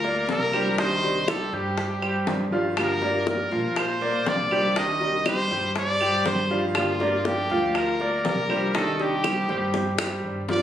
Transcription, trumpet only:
0, 0, Header, 1, 2, 480
1, 0, Start_track
1, 0, Tempo, 497925
1, 755, Time_signature, 4, 2, 24, 8
1, 10240, End_track
2, 0, Start_track
2, 0, Title_t, "Trumpet"
2, 0, Program_c, 0, 56
2, 0, Note_on_c, 0, 70, 100
2, 249, Note_off_c, 0, 70, 0
2, 289, Note_on_c, 0, 70, 104
2, 729, Note_off_c, 0, 70, 0
2, 762, Note_on_c, 0, 72, 109
2, 1244, Note_on_c, 0, 69, 99
2, 1259, Note_off_c, 0, 72, 0
2, 1482, Note_on_c, 0, 67, 80
2, 1497, Note_off_c, 0, 69, 0
2, 2437, Note_off_c, 0, 67, 0
2, 2697, Note_on_c, 0, 70, 95
2, 3132, Note_off_c, 0, 70, 0
2, 3176, Note_on_c, 0, 70, 95
2, 3655, Note_on_c, 0, 72, 98
2, 3670, Note_off_c, 0, 70, 0
2, 4129, Note_on_c, 0, 74, 106
2, 4144, Note_off_c, 0, 72, 0
2, 4609, Note_on_c, 0, 75, 101
2, 4624, Note_off_c, 0, 74, 0
2, 5080, Note_off_c, 0, 75, 0
2, 5090, Note_on_c, 0, 72, 107
2, 5528, Note_off_c, 0, 72, 0
2, 5577, Note_on_c, 0, 74, 109
2, 6012, Note_off_c, 0, 74, 0
2, 6044, Note_on_c, 0, 72, 96
2, 6373, Note_off_c, 0, 72, 0
2, 6524, Note_on_c, 0, 65, 90
2, 7004, Note_on_c, 0, 67, 99
2, 7019, Note_off_c, 0, 65, 0
2, 7478, Note_off_c, 0, 67, 0
2, 7487, Note_on_c, 0, 70, 88
2, 7926, Note_off_c, 0, 70, 0
2, 7968, Note_on_c, 0, 70, 88
2, 8407, Note_off_c, 0, 70, 0
2, 8450, Note_on_c, 0, 69, 83
2, 8692, Note_on_c, 0, 67, 85
2, 8706, Note_off_c, 0, 69, 0
2, 9642, Note_off_c, 0, 67, 0
2, 10132, Note_on_c, 0, 74, 104
2, 10240, Note_off_c, 0, 74, 0
2, 10240, End_track
0, 0, End_of_file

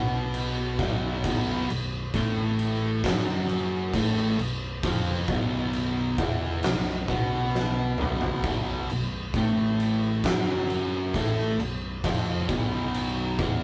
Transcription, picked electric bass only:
0, 0, Header, 1, 2, 480
1, 0, Start_track
1, 0, Tempo, 899550
1, 668, Time_signature, 4, 2, 24, 8
1, 7275, End_track
2, 0, Start_track
2, 0, Title_t, "Picked electric bass"
2, 0, Program_c, 0, 34
2, 0, Note_on_c, 0, 35, 92
2, 403, Note_off_c, 0, 35, 0
2, 421, Note_on_c, 0, 23, 104
2, 647, Note_off_c, 0, 23, 0
2, 661, Note_on_c, 0, 23, 88
2, 887, Note_off_c, 0, 23, 0
2, 906, Note_on_c, 0, 23, 72
2, 1130, Note_off_c, 0, 23, 0
2, 1141, Note_on_c, 0, 33, 100
2, 1603, Note_off_c, 0, 33, 0
2, 1620, Note_on_c, 0, 30, 109
2, 2082, Note_off_c, 0, 30, 0
2, 2098, Note_on_c, 0, 33, 95
2, 2325, Note_off_c, 0, 33, 0
2, 2348, Note_on_c, 0, 23, 84
2, 2571, Note_off_c, 0, 23, 0
2, 2577, Note_on_c, 0, 29, 93
2, 2804, Note_off_c, 0, 29, 0
2, 2819, Note_on_c, 0, 23, 80
2, 3281, Note_off_c, 0, 23, 0
2, 3298, Note_on_c, 0, 28, 92
2, 3525, Note_off_c, 0, 28, 0
2, 3546, Note_on_c, 0, 23, 85
2, 3769, Note_off_c, 0, 23, 0
2, 3777, Note_on_c, 0, 35, 75
2, 4241, Note_off_c, 0, 35, 0
2, 4263, Note_on_c, 0, 23, 92
2, 4488, Note_off_c, 0, 23, 0
2, 4503, Note_on_c, 0, 23, 99
2, 4728, Note_off_c, 0, 23, 0
2, 4744, Note_on_c, 0, 23, 77
2, 4969, Note_off_c, 0, 23, 0
2, 4984, Note_on_c, 0, 33, 93
2, 5444, Note_off_c, 0, 33, 0
2, 5461, Note_on_c, 0, 30, 95
2, 5923, Note_off_c, 0, 30, 0
2, 5943, Note_on_c, 0, 33, 90
2, 6169, Note_off_c, 0, 33, 0
2, 6182, Note_on_c, 0, 23, 74
2, 6408, Note_off_c, 0, 23, 0
2, 6424, Note_on_c, 0, 29, 96
2, 6649, Note_off_c, 0, 29, 0
2, 6661, Note_on_c, 0, 23, 92
2, 7124, Note_off_c, 0, 23, 0
2, 7143, Note_on_c, 0, 28, 100
2, 7275, Note_off_c, 0, 28, 0
2, 7275, End_track
0, 0, End_of_file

